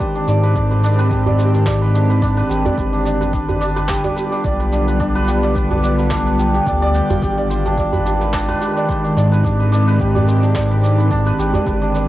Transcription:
Already playing: D#3 G#3 C4 D4 G4 D5
0.00 C5, kick, cabasa
0.15 D4, cabasa
0.28 G#2 D5, cabasa
0.43 B4, cabasa
0.56 D4, kick, cabasa
0.71 B4, djembe tone, cabasa
0.84 D4, cabasa
0.99 B4, djembe slap, cabasa
1.11 G4, kick, cabasa
1.26 D5, djembe bass, cabasa
1.39 C5, cabasa
1.54 D4, djembe slap, cabasa
1.66 D5, kick, clap, cabasa
1.82 B4, cabasa
1.94 D4, cabasa
2.10 B4, cabasa
2.22 D4, kick, cabasa
2.37 B4, cabasa
2.50 G#1 G4, cabasa
2.65 D5, djembe bass, cabasa
2.78 G1 D3 B4, kick, cabasa
2.93 D4, cabasa
3.05 D5, cabasa
3.10 F4
3.17 G3 B3 B4, djembe tone, cabasa
3.21 djembe slap
3.33 D4, kick, cabasa
3.48 B4, djembe bass, cabasa
3.61 D4, cabasa
3.76 B4, djembe slap, cabasa
3.89 G4, kick, clap, cabasa
4.04 D5, djembe slap, djembe tone, cabasa
4.16 B4, cabasa
4.32 D4, cabasa
4.44 B1 D5, kick, cabasa
4.60 B4, cabasa
4.73 D4 B4, cabasa
4.88 B4, cabasa
5.00 D4, kick, cabasa
5.15 B4, djembe tone, cabasa
5.28 G4, cabasa
5.43 D5, djembe slap, cabasa
5.55 B4, kick, cabasa
5.71 D4, djembe bass, cabasa
5.83 D5, cabasa
5.98 B4, djembe slap, cabasa
6.11 D4, kick, clap, cabasa
6.26 B4, cabasa
6.39 G4, cabasa
6.54 G4, cabasa
6.67 D2 D5, kick, cabasa
6.82 D5, cabasa
6.95 G5, cabasa
7.10 G1 F4, djembe bass, cabasa
7.22 G#1 D#3 G4, kick, cabasa
7.37 D5, cabasa
7.45 G#3
7.50 C5, cabasa
7.65 D4, djembe slap, djembe tone, cabasa
7.78 D5, kick, cabasa
7.93 B4, djembe bass, cabasa
8.06 D4, cabasa
8.21 C4 B4, djembe slap, cabasa
8.33 D4, kick, clap, cabasa
8.43 G4
8.48 B4, djembe slap, djembe tone, cabasa
8.61 G4, cabasa
8.76 D5, cabasa
8.89 C5, kick, cabasa
9.04 D4, cabasa
9.17 G#2 D5, cabasa
9.32 B4, cabasa
9.44 D4, kick, cabasa
9.59 B4, djembe tone, cabasa
9.72 D4, cabasa
9.87 B4, djembe slap, cabasa
10.00 G4, kick, cabasa
10.15 D5, djembe bass, cabasa
10.28 C5, cabasa
10.43 D4, djembe slap, cabasa
10.55 D5, kick, clap, cabasa
10.70 B4, cabasa
10.83 D4, cabasa
10.98 B4, cabasa
11.11 D4, kick, cabasa
11.26 B4, cabasa
11.39 G#1 G4, cabasa
11.54 D5, djembe bass, cabasa
11.66 G1 D3 B4, kick, cabasa
11.82 D4, cabasa
11.94 D5, cabasa

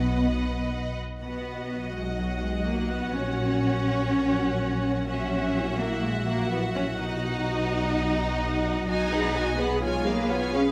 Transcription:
Already playing: B1 B2 B3 D#4 F#4 B4 D#5 F#5
1.20 B1 B2 B3 F#4 D#5 F#5
1.37 B3
1.54 F#4
1.70 B4
1.86 F#4
1.94 G#3
2.01 D#4
2.18 F#3
2.33 B3
2.42 G#3
2.50 F#4
2.66 A#3 B4
2.83 F#4
2.91 B3
2.98 D#4
3.14 A#1 A#2 C#4 C#5
3.31 F#3
3.47 F#4
3.62 C#4
3.79 F#4
3.95 C#4
4.11 A#2
4.27 F#3
4.43 F#4
4.60 C#4
4.76 F#4
4.91 C#4
5.08 A#2 C#4 F#4 E5 F#5
5.25 F#3
5.40 F#4
5.56 E4
5.72 F#4
5.80 A#3
5.89 E4
6.04 A#2 G#3
6.21 F#3
6.28 A#3
6.37 F#4
6.51 B3 E4
6.68 F#4
6.75 C#4
6.84 E4
6.99 B1 B2 D#4 D#5
7.15 F#3
7.31 F#4
7.47 D#4
7.63 F#4
7.78 D#4
7.94 B3
8.10 F#3
8.26 F#4
8.42 D#4
8.58 F#4
8.73 D#4
8.87 B1 B2 D#4 F#4 D#5 G#5
9.04 G#3
9.12 G#4 B4 F#5
9.20 F#4
9.35 F#4 G#4 D#5 G#5
9.52 F#4
9.58 B3 G#4 B4 F#5
9.67 D#4
9.83 B2 G#3 F4 C#5 G#5
9.99 G#3
10.06 A#3 G#4 B4 F5
10.15 F4
10.30 B3 F4 G#4 C#5 G#5
10.47 F4
10.54 C#4 G#4 B4 F5
10.63 C#4

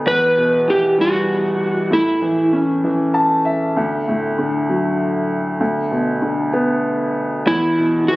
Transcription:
0.06 E2 B4
0.37 B2
0.68 E3 G4
0.98 G3 F#4
1.91 A2 E4
2.22 E3
2.53 C#4
2.84 E3
3.14 A5
3.45 E5
3.77 D2
4.08 A2
4.38 D3
4.69 F#3
5.60 D2
5.91 B2
6.22 D3
6.53 B3
7.46 E2 E4
7.78 B2
8.08 E3 F#4

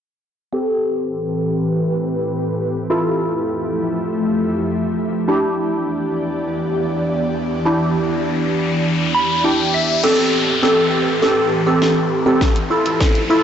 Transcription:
0.53 A2 E3 C4 G4 A4 B4
2.90 F2 F3 A3 E4 F4 A4 E5
5.28 E2 E3 B3 D4 E4 G4 D5, riser
7.65 D4 E4 G4
9.14 B5
9.44 D4 E4 G4 G5
9.74 E5
10.03 A2 E3 C4 G4 A4 B4, snare, crash, downlifter, riser
10.63 C4 G4 A4, snare
11.22 C4 G4 A4, snare
11.66 C4 G4 A4
11.82 snare
12.26 C4 G4 A4
12.41 F2 F3 A3 G4 C5, kick, snare
12.56 closed hi-hat
12.70 E4 F4 A4
12.86 closed hi-hat
13.00 kick, snare
13.15 closed hi-hat
13.30 E4 F4 A4

